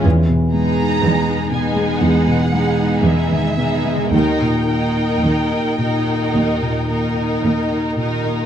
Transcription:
X:1
M:4/4
L:1/16
Q:1/4=55
K:Ebmix
V:1 name="Violin section"
z2 b4 ^g2 _g4 =e4 | g12- g2 z2 |]
V:2 name="Violin section"
z2 [^D^G]4 [DG]4 [DG]4 [DG]2 | [EB]2 [EB]4 [EB]4 [EB]4 [EB]2 |]
V:3 name="Harp"
[=E,=B,^G]16 | [E,EB]16 |]
V:4 name="Viola section"
z2 [^G,=B,]4 [G,B,]4 [G,B,]4 [G,B,]2 | [E,E]2 [E,E]4 [E,E]4 [E,E]4 [E,E]2 |]
V:5 name="Felt piano" clef=bass
=E,, =B,, ^G, ^D =B D B,, G, E,, B,, G, D B ^D, B,, G, | E,, B,, B, E e E B,, B, E,, B,, B, E e E B,, B, |]
V:6 name="Cello section" clef=bass
=E,,4 E,,4 E,,4 E,,4 | E,,4 E,,4 E,,4 E,,4 |]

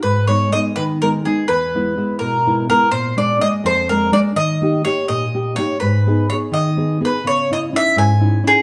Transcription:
X:1
M:6/8
L:1/8
Q:3/8=83
K:G#m
V:1 name="Mandolin"
B c d B A G | B3 A2 A | ^B =d ^d B A =d | d2 c d2 c |
B2 c d2 B | c d e g2 G |]
V:2 name="Nylon-string guitar"
G,, [G,B,D] [G,B,D] D, [G,B,D] [G,B,D] | E,, [G,B,E] [G,B,E] B,, [G,B,E] [G,B,E] | A,, [G,A,=D] [G,A,D] ^E,, [G,A,D] [G,A,D] | D, [A,D=G] [A,DG] A,, [A,DG] [A,DG] |
G,, [B,DG] [B,DG] D, [B,DG] [B,DG] | C, [CDE] [CDE] G,, [CDE] [CDE] |]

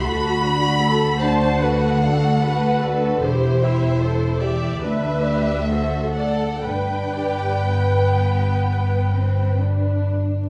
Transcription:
X:1
M:4/4
L:1/16
Q:1/4=73
K:G
V:1 name="Violin section"
b6 a2 f6 B2 | c6 d2 e6 f2 | g12 z4 |]
V:2 name="Viola section"
F4 A2 c2 B2 A2 B2 A2 | G2 E2 A2 G2 B4 A4 | B12- B2 z2 |]
V:3 name="Violin section"
[FA]2 [DF]2 [FA]2 [DF]2 [FA]2 [DF]2 [FA]2 [DF]2 | [Ec]2 [Ge]2 [Ec]2 [Ge]2 [DB]2 [Gd]2 [Fc]2 [Ad]2 | [DB]2 [Gd]2 B,6 C2 D4 |]
V:4 name="Cello section" clef=bass
D,,16 | E,,8 D,,8 | G,,12- G,,3 z |]
V:5 name="Double bass section" clef=bass
D,,16 | E,,,8 D,,8 | G,,,12- G,,,3 z |]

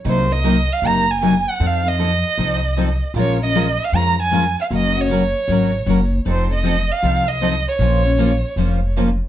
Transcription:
X:1
M:4/4
L:1/16
Q:"Swing" 1/4=155
K:Bbm
V:1 name="Violin"
c2 e4 f2 b2 a4 g2 | f2 e12 z2 | d2 e4 f2 b2 a4 f2 | e2 d12 z2 |
c2 e4 f4 e4 d2- | d12 z4 |]
V:2 name="Steel-string acoustic guitar"
[C,G,B,EB]2 [B,EB]2 [C,G,B,EB] z3 [C,G,B,EB]2 z2 [C,G,B,EB] z3 | [F,CE=A]2 [CEA]2 [F,CEA] z3 [F,CEA]2 z2 [F,CEA] z3 | [F,A,DFB]2 [DFB]2 [F,A,DFB] z3 [F,A,DFB]2 z2 [F,A,DFB] z3 | [D,G,B,DG]2 [B,DG]2 [D,G,B,DG] z3 [D,G,B,DG]2 z2 [D,G,B,DG] z3 |
[F,CE=A]2 [CEA]2 [F,CEA] z3 [F,CEA]2 z2 [F,CEA] z3 | [F,B,DFc]2 [DFc]2 [F,B,DFc] z3 [F,B,DFc]2 z2 [F,B,DFc] z3 |]
V:3 name="Steel-string acoustic guitar"
[C,G,B,EB]2 z2 [C,G,B,EB] z3 [C,G,B,EB]2 z2 [C,G,B,EB] z3 | [F,CE=A]2 z2 [F,CEA] z3 [F,CEA]2 z2 [F,CEA] z3 | [F,A,DFB]2 z2 [F,A,DFB] z3 [F,A,DFB]2 z2 [F,A,DFB] z3 | [G,DGB]2 z2 [G,DGB] z3 [G,DGB]2 z2 [G,DGB] z3 |
[F,CE=A]2 z2 [F,CEA] z3 [F,CEA]2 z2 [F,CEA] z3 | [F,B,DFc]2 z2 [F,B,DFc] z3 [F,B,DFc]2 z2 [F,B,DFc] z3 |]
V:4 name="Upright bass" clef=bass
C,,8 G,,,8 | F,,8 C,,8 | B,,,8 F,,8 | G,,,8 A,,,4 G,,,4 |
F,,,8 C,,8 | B,,,8 F,,,8 |]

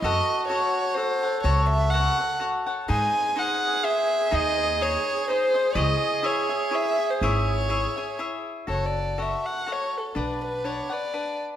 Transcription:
X:1
M:3/4
L:1/16
Q:"Swing" 1/4=124
K:C#m
V:1 name="Violin"
d4 c4 ^B4 | c2 e2 f4 z4 | g4 f4 e4 | d4 c4 ^B4 |
d4 c4 e3 ^B | c8 z4 | [K:F#m] c d3 e2 f2 c2 A2 | B2 B2 c2 d4 z2 |]
V:2 name="Cavaquinho"
[FAcf]4 [FAcf]4 [FAcf]2 [Acf]2 | [FAcf]4 [FAcf]2 [Acf]2 [FAcf]2 [Acf]2 | [DG^Bd]4 [DGBd]4 [GB]4 | [DG^Bd]4 [DGd]4 [DGBd]2 [GBd]2 |
[EGc]4 [EGce]2 [Gce]2 [EGce]2 [Gce]2 | [EGce]4 [EGce]2 [Gce]2 [EGce]4 | [K:F#m] [FAf]4 [FAcf]4 [FAcf]4 | [DBdf]4 [DBdf]2 [Bdf]2 [DBdf]4 |]
V:3 name="Trumpet"
F8 A4- | A8- A2 z2 | G12- | G12 |
G12- | G8- G2 z2 | [K:F#m] z12 | z12 |]
V:4 name="Upright bass" clef=bass
F,,2 z8 z2 | C,,8 z4 | G,,2 z8 z2 | D,,8 z4 |
C,,2 z8 z2 | G,,,8 z4 | [K:F#m] F,,,8 z4 | B,,,8 z4 |]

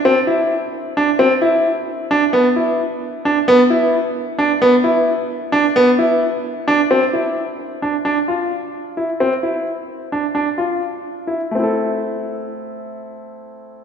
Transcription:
X:1
M:5/8
L:1/8
Q:1/4=131
K:C
V:1 name="Grand piano"
C E2 z D | C E2 z D | B, E2 z D | B, E2 z D |
B, E2 z D | B, E2 z D | C E2 z D | D F2 z E |
C E2 z D | D F2 z E | [A,CEA]4- [A,CEA]- | [A,CEA]4- [A,CEA] |]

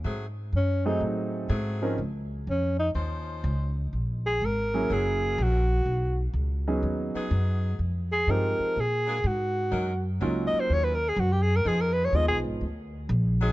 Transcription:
X:1
M:4/4
L:1/16
Q:"Swing" 1/4=124
K:Ebm
V:1 name="Alto saxophone"
z4 D2 E2 z8 | z4 D2 E2 z8 | z2 A2 B4 A4 G4- | G2 z12 z2 |
z2 A2 B4 A4 ^F4- | ^F2 z4 e =c d _c B A G =G A B | A B c d e A z8 z2 |]
V:2 name="Grand piano"
z6 [G,=A,=CE_A]6 z2 [F,CDEB]2 | z16 | z6 [G,B,D_FA]6 z4 | z6 [^F,=B,D^D^G]6 z4 |
z4 [F,A,=CE=G]4 z8 | z4 [G,B,DEF]6 z6 | z4 [F,A,CEF]4 z8 |]
V:3 name="Saxophone section"
[G,=A,=C_A]2 z8 z2 [G,=A,C_A]4 | z8 [F,DE=c]6 z2 | z8 [G,D_FB]6 z2 | z8 z2 [^F,=B,^D^G]6 |
z8 z2 [^F,B,=DA]2 z4 | [G,DEB]2 z2 [G,DEB]6 z6 | [F,CEA]6 z8 [G,DEA]2 |]
V:4 name="Upright bass" clef=bass
A,,4 G,,4 =A,,4 _A,,4 | D,,4 F,,4 E,,4 D,,4 | B,,,4 A,,,4 G,,,4 B,,,4 | =B,,,4 D,,4 ^D,,2 z2 ^F,,4 |
F,,4 =G,,2 z2 B,,4 A,,4 | G,,4 D,,2 z2 E,,4 G,,4 | F,,4 (3E,,2 C,,2 A,,,2 =D,,4 B,,,4 |]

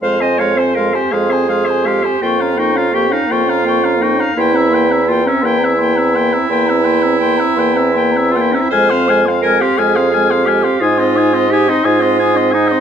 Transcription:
X:1
M:12/8
L:1/16
Q:3/8=56
K:Fm
V:1 name="Flute"
c' a c' a c' a c' a c' a c' a d' b d' b d' b d' b d' b d' b | c' b c' b c' b c' b c' b c' b c' b c' b c' b c' b c' b c' b | f' c' f' c' f' c' f' c' f' c' f' c' e' c' e' c' e' c' e' c' e' c' e' c' |]
V:2 name="Oboe"
f c f c f c f c f c f c g f g f g f g f g f g f | g =e g e g e g e g e g e g e g e g e g e g e g e | a f a f a f a f a f a f a e a e a e a e a e a e |]
V:3 name="Clarinet"
c e d c B G A4 G2 F2 E F G E F4 E2 | =E4 F D E16 F/2 E/2 D/2 E/2 | c4 B G A4 G2 F4 G E F4 E2 |]
V:4 name="French horn"
A, C A, C A, C A, C A, C A, C B, D B, D B, D B, D B, D B, D | B, C B, C B, C B, C B, C B, C B, C B, C B, C B, C B, C B, C | A, C A, C A, C A, C A, C A, C E C E C E C E C E C E C |]
V:5 name="Bassoon" clef=bass
F,,6 F,,6 F,,6 F,,6 | =E,,6 E,,6 E,,6 E,,6 | F,,6 F,,6 A,,6 A,,6 |]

